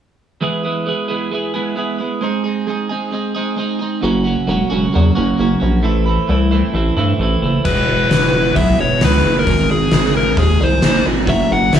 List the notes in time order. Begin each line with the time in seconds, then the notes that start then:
0.41 E2 E3 G#3 B3 E4 G#4
0.63 G#3 B3 E4 G#4
0.86 G#3 B3 E4 G#4
1.08 E2 E3 G#3 B3 E4 G#4
1.31 G#3 B3 E4 G#4
1.54 E2 E3 G#3 B3 E4 G#4
1.76 G#3 B3 E4 G#4
1.98 G#3 B3 E4 G#4
2.21 G#3 C4 D#4 G#4
2.44 C4 D#4 G#4
2.67 G#3 C4 D#4 G#4
2.89 G#3 C4 D#4 G#4
3.11 G#3 C4 D#4 G#4
3.35 G#3 C4 D#4 G#4
3.56 G#3 C4 D#4 G#4
3.79 C4 D#4 G#4
4.01 F#1 F#2 C#3 F#3 A#3 C#4 F#4
4.24 F#3 A#3 C#4 F#4
4.47 E1 F#3 A#3 C#4 F#4
4.70 E1 F#2 C#3 F#3 A#3 C#4 F#4
4.93 E2 F#3 A#3 C#4 F#4
5.15 F#1 F#2 C#3 F#3 A#3 C#4 F#4
5.38 F#1 F#3 A#3 C#4 F#4
5.60 A#1 F#3 A#3 C#4 F#4
5.82 A1 A2 E3 A3 C4 E4
6.06 A3 C4 E4
6.28 C2 E3 A3 C4 E4
6.51 A2 E3 A3 C4 E4
6.74 A1 E3 A3 C4 E4
6.97 G2 A2 E3 A3 C4 E4
7.19 A1 E3 A3 C4 E4
7.42 F#1 A3 C4 E4
7.64 E1 E2 B2 E3 G#3 B3 E4 B4, kick, crash
7.88 E1
8.10 E1 E3 G#3 B3 E4, snare, open hi-hat
8.32 E1
8.56 B1 E2 B2 E3 G#3 B3 E4 E5, kick, open hi-hat
8.78 E1 E3 G#3 B3 E4 C#5
9.01 C#2 E3 G#3 B3 E4 B4, snare, open hi-hat
9.24 F#1 E3 G#3 B3 E4
9.39 A#4
9.47 G#1 G#2 D#3 G#3 C4 D#4 G#4, kick, open hi-hat
9.70 G#1 G#4
9.91 G#1 G#3 C4 D#4 G#4, snare, open hi-hat
10.17 A#4
10.37 D#2 G#2 D#3 G#3 C4 D#4 G#4, kick, open hi-hat
10.59 C2 G#3 C4 D#4 G#4
10.64 C5
10.82 F#1 G#3 C4 D#4 G#4, snare, open hi-hat
11.04 G#1 G#3 C4 D#4 G#4
11.26 F#1 F#3 C#4 F#4 A#4 E5, kick, open hi-hat
11.51 F#1 F#5
11.71 F#1 F#3 C#4 F#4 A#4 E5, snare, open hi-hat